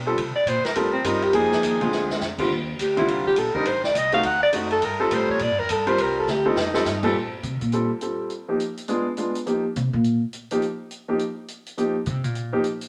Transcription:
Already playing: upright bass B2
0.06 grand piano G3 C4 F4 A4
0.18 upright bass C3, ride
0.35 alto saxophone D5, muted upright bass stroke
0.46 upright bass A#2, alto saxophone C5, hi-hat pedal, ride
0.65 alto saxophone A#4, muted upright bass stroke, snare, ride
0.75 upright bass A2, grand piano G3 C4 F4 A#4, alto saxophone A4, ride
0.93 alto saxophone C4
1.04 upright bass G2, grand piano G3 C4 F4 A#4, alto saxophone D#4, hi-hat pedal, ride
1.22 alto saxophone G4, ride
1.32 upright bass F2, grand piano F3 A#3 D#4 G#4, alto saxophone G#4, ride
1.52 snare
1.63 upright bass D#2, hi-hat pedal, ride
1.81 grand piano D3 G#3 C4 F4, ride
1.92 upright bass D2, snare
2.10 snare
2.20 upright bass F2, snare, hi-hat pedal
2.38 grand piano D3 G3 C4 F4, kick, crash
2.50 upright bass D#2
2.79 upright bass D2, alto saxophone G4, hi-hat pedal, ride
2.97 grand piano D3 G3 C4 F4, alto saxophone E4, ride
3.08 upright bass C2, alto saxophone F4, ride
3.26 alto saxophone G4, kick
3.36 upright bass A#1, alto saxophone A4, hi-hat pedal, ride
3.54 grand piano D3 G3 C4 D#4, alto saxophone A#4, muted upright bass stroke, kick
3.66 upright bass A1, alto saxophone C5, ride
3.84 alto saxophone D5, snare
3.95 upright bass C2, alto saxophone D#5, hi-hat pedal, ride
4.12 grand piano A3 C4 D#4 F#4, alto saxophone F5, ride
4.23 upright bass D2, alto saxophone F#5, ride
4.43 alto saxophone D5
4.52 upright bass F#2, grand piano A3 C4 D#4 F#4, hi-hat pedal, ride
4.71 alto saxophone A4, ride
4.82 upright bass G2, alto saxophone A#4, ride
4.99 grand piano G3 C4 F4 A4, alto saxophone A4
5.11 upright bass A2, alto saxophone C5, hi-hat pedal, ride
5.29 alto saxophone C#5, kick
5.39 upright bass A#2, alto saxophone D5, ride
5.50 upright bass G2
5.59 upright bass F2, alto saxophone A#4
5.69 upright bass G2, alto saxophone A4, hi-hat pedal, ride
5.87 grand piano G3 C4 F4 A#4, alto saxophone C5, ride
5.98 upright bass C2, alto saxophone A#4, ride
6.20 alto saxophone A4
6.27 upright bass D2, alto saxophone G4, snare, hi-hat pedal
6.45 grand piano G3 C4 F4 A4, alto saxophone D#4
6.56 upright bass F2, snare
6.74 grand piano G3 C4 F4 A4, snare
6.85 upright bass G2, snare, hi-hat pedal
7.03 grand piano A#2 G3 C4 F4 A4, kick, crash
7.43 upright bass C3, closed hi-hat
7.61 upright bass A#2, closed hi-hat
7.72 grand piano G3 C4 F4 A4, closed hi-hat
8.01 grand piano G3 C4 F4 A4, closed hi-hat
8.30 closed hi-hat
8.48 grand piano F3 A#3 D#4 G4
8.60 closed hi-hat
8.77 closed hi-hat
8.88 grand piano G#3 B3 D4 F4, closed hi-hat
9.17 grand piano G#3 B3 D4 F4, closed hi-hat
9.35 closed hi-hat
9.46 grand piano F3 A#3 D#4 G4, closed hi-hat
9.76 upright bass C3, closed hi-hat
9.93 upright bass A#2
10.04 closed hi-hat
10.33 closed hi-hat
10.51 grand piano F3 A#3 D#4 G4, closed hi-hat
10.62 closed hi-hat
10.91 closed hi-hat
11.08 grand piano F3 A#3 D#4 G4
11.19 closed hi-hat
11.48 closed hi-hat
11.66 closed hi-hat
11.78 grand piano F3 A#3 D#4 G4, closed hi-hat
12.06 upright bass C3, closed hi-hat
12.24 upright bass A#2, closed hi-hat
12.35 closed hi-hat
12.52 grand piano F3 A#3 D#4 G4
12.64 closed hi-hat
12.81 closed hi-hat

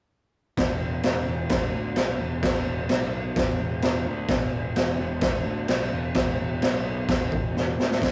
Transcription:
0.57 picked electric bass E1, kick, snare, crash
1.03 picked electric bass E1, snare, crash
1.27 picked electric bass E1
1.49 picked electric bass E1, kick, snare, crash
1.74 picked electric bass D2
1.96 picked electric bass B1, snare, crash
2.19 picked electric bass E1
2.43 picked electric bass E1, kick, snare, crash
2.65 picked electric bass E1
2.89 picked electric bass B1, snare, crash
3.36 picked electric bass E1, kick, snare, crash
3.59 picked electric bass E1
3.82 picked electric bass E1, snare, crash
4.05 picked electric bass D2
4.28 picked electric bass E1, kick, snare, crash
4.75 picked electric bass E1, snare, crash
4.98 picked electric bass E1
5.21 picked electric bass E1, kick, snare, crash
5.44 picked electric bass D2
5.68 picked electric bass B1, snare, crash
5.92 picked electric bass E1
6.14 picked electric bass E1, kick, snare, crash
6.40 picked electric bass E1
6.62 picked electric bass B1, snare, crash
7.08 picked electric bass E1, kick, snare, crash
7.32 picked electric bass E1, kick
7.54 picked electric bass E1, snare
7.77 picked electric bass D2, snare
7.91 snare
8.02 picked electric bass E1, kick, snare, floor tom, crash

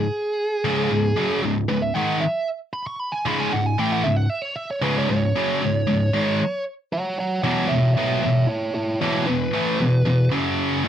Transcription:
Already playing: lead electric guitar G#4
0.65 distorted electric guitar C#2 G#2 C#3
0.90 distorted electric guitar C#2 G#2
1.16 distorted electric guitar F#2 C#3 F#3
1.43 distorted electric guitar C#2 G#2
1.68 distorted electric guitar C#2 G#2, lead electric guitar B4
1.82 lead electric guitar E5
1.94 distorted electric guitar G#2 D#3 G#3, lead electric guitar F#5
2.21 lead electric guitar E5
2.73 lead electric guitar B5
2.87 lead electric guitar C#6
3.00 lead electric guitar B5
3.12 lead electric guitar G#5
3.26 distorted electric guitar C#2 G#2 C#3, lead electric guitar B5
3.40 lead electric guitar G#5
3.52 distorted electric guitar C#2 G#2, lead electric guitar F#5
3.66 lead electric guitar G#5
3.79 distorted electric guitar A2 E3 A3, lead electric guitar G5
3.93 lead electric guitar F#5
4.04 distorted electric guitar C#2 G#2, lead electric guitar E5
4.16 lead electric guitar F#5
4.30 lead electric guitar E5
4.42 lead electric guitar C#5
4.56 lead electric guitar E5
4.71 lead electric guitar C#5
4.82 distorted electric guitar C#2 G#2 C#3, lead electric guitar B4
4.98 lead electric guitar C#5
5.10 distorted electric guitar C#2 G#2, lead electric guitar C#5
5.36 distorted electric guitar F#2 C#3 F#3
5.62 distorted electric guitar C#2 G#2
5.87 distorted electric guitar C#2 G#2
6.14 distorted electric guitar G#2 D#3 G#3
6.93 lead electric guitar C#5 F#5
7.19 lead electric guitar C#5 F#5
7.43 distorted electric guitar E2 B2 E3, lead electric guitar C#5 F#5
7.68 distorted electric guitar E2, lead electric guitar C#5 E5
7.72 distorted electric guitar B2
7.94 distorted electric guitar B2 F#3, lead electric guitar C#5 E5
7.98 distorted electric guitar B3
8.22 distorted electric guitar E2 B2, lead electric guitar C#5 E5
8.47 lead electric guitar E4 C#5
8.75 lead electric guitar E4 C#5
9.01 distorted electric guitar E2 B2 E3, lead electric guitar E4 C#5
9.27 distorted electric guitar E2 B2, lead electric guitar B4
9.53 distorted electric guitar A2 E3 A3
9.80 distorted electric guitar E2 B2
10.05 distorted electric guitar E2 B2
10.32 distorted electric guitar F#2 C#3 F#3
10.84 distorted electric guitar A2 E3

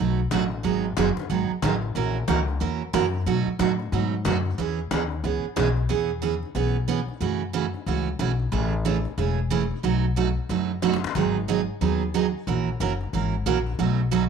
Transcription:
0.00 upright bass B1, steel-string acoustic guitar B2 F#3 A3 D#4 F#4
0.31 upright bass A1, steel-string acoustic guitar B2 F#3 A3 D#4 F#4, cajon bass, cajon slap
0.51 cajon slap
0.63 upright bass G#1, steel-string acoustic guitar D#3 F#3 B3 D#4 G#4, cajon bass, cajon slap
0.97 upright bass F#1, steel-string acoustic guitar D#3 F#3 B3 D#4 G#4, cajon bass, cajon slap
1.17 muted upright bass stroke, cajon bass, cajon slap
1.30 upright bass G#1, steel-string acoustic guitar D#3 F#3 B3 D#4 G#4, cajon bass, cajon slap
1.50 muted upright bass stroke
1.62 upright bass A1, steel-string acoustic guitar D#3 F#3 B3 D#4 G#4, cajon bass, cajon slap
1.82 cajon slap
1.95 upright bass A#1, steel-string acoustic guitar E3 A#3 C#4 F#4 A#4, cajon bass, cajon slap
2.28 upright bass C#2, steel-string acoustic guitar E3 A#3 C#4 F#4 A#4, cajon bass, cajon slap
2.48 cajon slap
2.60 upright bass E2, steel-string acoustic guitar E3 A#3 C#4 F#4 A#4, cajon bass, cajon slap
2.93 upright bass F#2, steel-string acoustic guitar E3 A#3 C#4 F#4 A#4, cajon bass, cajon slap
3.14 cajon slap
3.26 steel-string acoustic guitar B2 F#3 A3 D#4 F#4, upright bass B2, cajon bass, cajon slap
3.47 muted upright bass stroke
3.59 upright bass A2, steel-string acoustic guitar B2 F#3 A3 D#4 F#4, cajon bass, cajon slap
3.79 cajon slap
3.92 upright bass G#2, steel-string acoustic guitar B2 F#3 A3 D#4 F#4, cajon bass, cajon slap
4.25 upright bass F#2, steel-string acoustic guitar B2 F#3 A3 D#4 F#4, cajon bass, cajon slap
4.45 cajon slap
4.58 upright bass E2, steel-string acoustic guitar E3 B3 C#4 G#4, cajon bass, cajon slap
4.91 upright bass D#2, steel-string acoustic guitar E3 B3 C#4 G#4, cajon bass, cajon slap
5.11 cajon slap
5.24 upright bass C#2, steel-string acoustic guitar E3 B3 C#4 G#4, cajon bass, cajon slap
5.43 muted upright bass stroke
5.56 upright bass B1, steel-string acoustic guitar E3 B3 C#4 G#4, cajon bass, cajon slap
5.77 cajon slap
5.89 upright bass E2, steel-string acoustic guitar E3 B3 C#4 G#4, cajon bass, cajon slap
6.22 steel-string acoustic guitar E3 B3 C#4 G#4, cajon bass, cajon slap
6.43 cajon slap
6.55 upright bass B1, steel-string acoustic guitar E3 B3 C#4 G#4, cajon bass, cajon slap
6.88 steel-string acoustic guitar E3 B3 C#4 G#4, cajon bass, cajon slap
7.08 cajon slap
7.20 upright bass F#2, steel-string acoustic guitar C#3 E3 A3 C#4 F#4, cajon bass, cajon slap
7.53 steel-string acoustic guitar C#3 E3 A3 C#4 F#4, cajon bass, cajon slap
7.74 cajon slap
7.86 upright bass C#2, steel-string acoustic guitar C#3 E3 A3 C#4 F#4, cajon bass, cajon slap
8.19 upright bass B1, steel-string acoustic guitar C#3 E3 A3 C#4 F#4, cajon bass, cajon slap
8.39 cajon slap
8.52 upright bass A1, steel-string acoustic guitar C#3 E3 A3 C#4 G#4, cajon bass, cajon slap
8.85 steel-string acoustic guitar C#3 E3 A3 C#4 G#4, cajon bass, cajon slap
9.05 cajon slap
9.18 upright bass E1, steel-string acoustic guitar C#3 E3 A3 C#4 G#4, cajon bass, cajon slap
9.50 steel-string acoustic guitar C#3 E3 A3 C#4 G#4, cajon bass, cajon slap
9.71 cajon slap
9.83 upright bass B1, steel-string acoustic guitar B2 F#3 A3 D#4 F#4, cajon bass, cajon slap
10.16 steel-string acoustic guitar B2 F#3 A3 D#4 F#4, cajon bass, cajon slap
10.49 upright bass F#1, steel-string acoustic guitar B2 F#3 A3 D#4 F#4, cajon bass, cajon slap
10.82 steel-string acoustic guitar B2 F#3 A3 D#4 F#4, cajon slap
10.94 cajon slap
11.04 cajon slap
11.15 upright bass G#1, steel-string acoustic guitar D#3 F#3 B3 D#4 G#4, cajon bass
11.48 steel-string acoustic guitar D#3 F#3 B3 D#4 G#4, cajon bass, cajon slap
11.81 upright bass D#2, steel-string acoustic guitar D#3 F#3 B3 D#4 G#4, cajon bass, cajon slap
12.14 steel-string acoustic guitar D#3 F#3 B3 D#4 G#4, cajon bass, cajon slap
12.47 upright bass A#1, steel-string acoustic guitar E3 A#3 C#4 F#4 A#4, cajon bass, cajon slap
12.80 upright bass F#1, steel-string acoustic guitar E3 A#3 C#4 F#4 A#4, cajon bass, cajon slap
13.01 cajon slap
13.13 upright bass G#1, steel-string acoustic guitar E3 A#3 C#4 F#4 A#4, cajon bass, cajon slap
13.46 upright bass A#1, steel-string acoustic guitar E3 A#3 C#4 F#4 A#4, cajon bass, cajon slap
13.66 cajon slap
13.79 upright bass B1, steel-string acoustic guitar B2 F#3 A3 D#4 F#4, cajon bass, cajon slap
14.11 steel-string acoustic guitar B2 F#3 A3 D#4 F#4, cajon bass, cajon slap

